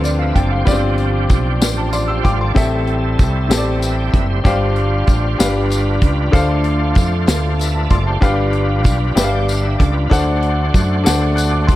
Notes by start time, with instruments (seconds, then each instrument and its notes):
Already playing: fretless electric bass D2, upright piano D3 C4 F4 A4 B4 D5, tonewheel organ F3 C4 D4
0.04 upright piano D5, closed hi-hat, tambourine
0.19 tonewheel organ B4 E5, upright piano F5
0.35 fretless electric bass F#1, tonewheel organ A4 D5, upright piano G5, kick, closed hi-hat
0.51 tonewheel organ G4 C5, upright piano F5
0.65 fretless electric bass G1, upright piano G2 B3 F4 G4 D5, tonewheel organ F3 C4 D4 G4, kick, closed hi-hat, tambourine
0.71 upright piano C4
0.98 closed hi-hat
1.30 fretless electric bass B1, kick, closed hi-hat, tambourine
1.61 fretless electric bass A1, snare, closed hi-hat, tambourine
1.77 upright piano A5
1.93 upright piano D5 C6, closed hi-hat, tambourine
2.08 tonewheel organ G4 C5, upright piano E6
2.23 fretless electric bass G#1, tonewheel organ C5 F5, upright piano G5 D6, kick, closed hi-hat
2.38 tonewheel organ A4 D5, upright piano C6
2.53 fretless electric bass A1, upright piano A2 C4 G4 A4 E5, tonewheel organ G3 C4 E4 A4, kick, closed hi-hat
2.57 tambourine
2.87 closed hi-hat
3.19 fretless electric bass C2, kick, closed hi-hat, tambourine
3.49 fretless electric bass A1, upright piano C4 G4 A4 C5, snare, closed hi-hat, tambourine
3.57 upright piano D5
3.82 tonewheel organ B4 E5, closed hi-hat, tambourine
3.97 tonewheel organ D5 G5
4.11 fretless electric bass F#1, tonewheel organ B4 E5, kick, closed hi-hat
4.30 tonewheel organ G4 C5
4.44 fretless electric bass G1, upright piano G2 D4 G4 C5 F5, tonewheel organ G3 D4 F4 C5, kick, closed hi-hat, tambourine
4.76 closed hi-hat
5.07 fretless electric bass A1, kick, closed hi-hat, tambourine
5.38 fretless electric bass G1, upright piano G2 D4 G4 B4 F5, tonewheel organ G3 D4 F4 B4, snare, closed hi-hat, tambourine
5.71 closed hi-hat, tambourine
6.02 fretless electric bass C#2, kick, closed hi-hat
6.31 fretless electric bass D2, upright piano D3 D4 A4 C5 F5, tonewheel organ A3 D4 F4 C5, kick, closed hi-hat
6.35 tambourine
6.64 closed hi-hat
6.95 fretless electric bass F2, kick, closed hi-hat, tambourine
7.28 fretless electric bass D2, snare, closed hi-hat, tambourine
7.59 tonewheel organ B4 E5, closed hi-hat, tambourine
7.74 upright piano A5
7.89 fretless electric bass F#1, tonewheel organ A4 D5, upright piano C6, kick, closed hi-hat
8.06 tonewheel organ G4 C5, upright piano A5
8.21 fretless electric bass G1, upright piano G2 D4 G4 B4 F5, tonewheel organ G3 D4 F4 A4, kick, closed hi-hat, tambourine
8.29 tonewheel organ B4
8.53 closed hi-hat
8.84 fretless electric bass B1, kick, closed hi-hat, tambourine
9.15 fretless electric bass G1, upright piano D4 G4 B4 E5, tonewheel organ E5 A5, snare, closed hi-hat, tambourine
9.24 upright piano F5
9.31 tonewheel organ D5 G5
9.48 tonewheel organ B4 F5, closed hi-hat, tambourine
9.61 tonewheel organ B4 E5
9.78 fretless electric bass C#2, tonewheel organ A4 D5, kick, closed hi-hat
9.93 tonewheel organ F4 B4
10.10 fretless electric bass D2, upright piano D3 D4 A4 C5 F#5, tonewheel organ A3 D4 F#4 B4, kick, closed hi-hat, tambourine
10.17 tonewheel organ C5
10.43 closed hi-hat
10.74 fretless electric bass F#2, kick, closed hi-hat, tambourine
11.04 fretless electric bass D2, upright piano D4 A4 C5 F#5, snare, closed hi-hat, tambourine
11.36 upright piano F#6, closed hi-hat, tambourine
11.51 upright piano D6
11.67 fretless electric bass F#1, upright piano C6, kick, closed hi-hat